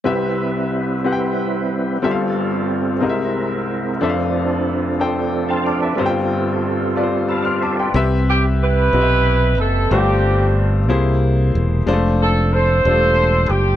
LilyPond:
<<
  \new Staff \with { instrumentName = "Grand piano" } { \time 6/8 \key c \major \tempo 4. = 61 << { r2. | r2. | r2 r16 <g'' c'''>16 <a'' d'''>16 <e'' a''>16~ | <e'' a''>16 r4. r16 <b'' e'''>16 <c''' f'''>16 <a'' d'''>16 <g'' c'''>16~ |
<g'' c'''>16 r2 r8. | r2. | r2. | } \\ { <c' g' b' e''>4. <c' g' b' fis'' g''>4. | <c' g' a' e'' f''>4. <c' gis' bes' ees'' e''>4. | <d' a' c'' e'' f''>4. <d' a' c'' g''>4. | <f' a' c'' f'' g''>4. <f' a' b' c'' d''>4. |
<c' g' b' e''>4. <c' g' b' ees'' e''>4. | <a f' g' c''>4. <bes e' gis' c''>4. | <aes a d' f' c''>4. <g a d' f' c''>4. | } >> }
  \new Staff \with { instrumentName = "Grand piano" } { \clef bass \time 6/8 \key c \major <c, c>2. | <g,, g,>4. <c, c>4. | <f,, f,>2. | <g,, g,>2. |
c4. r4. | g,4. c4. | r2. | }
  \new Staff \with { instrumentName = "Tonewheel organ" } { \time 6/8 \key c \major << { r2. | r2. | r2 r16 <f'' a''>16 <d'' f''>16 <b' d''>16~ | <b' d''>16 r4. r16 <f'' a''>16 <d'' f''>16 <c'' e''>16 <b' d''>16~ |
<b' d''>16 r2 r8. | r2. | r2. | } \\ { <g c' e' b'>2. | <g c' f' a'>4. <gis c' ees' e' bes'>4. | <f c' d' a'>2. | <g c' f' a'>2. |
r2. | r2. | r2. | } >> }
  \new Staff \with { instrumentName = "Horn section" } { \time 6/8 \key c \major << { r2. | r2. | r2. | r2. |
r8 g'8 b'4. a'8 | g'4 r2 | r8 a'8 c''4. g'8 | } \\ { r2. | r2. | r2. | r2. |
r4 <e' g'>4. r8 | <c' d'>4. r4. | r4 a'4. r8 | } >> }
  \new Staff \with { instrumentName = "Fingered electric bass" } { \clef bass \time 6/8 \key c \major r2. | r2. | r2. | r2. |
c,4. b,,4 fis,,8 | g,,4. c,4 e,,8 | f,,4. e,,4 fis,,8 | }
>>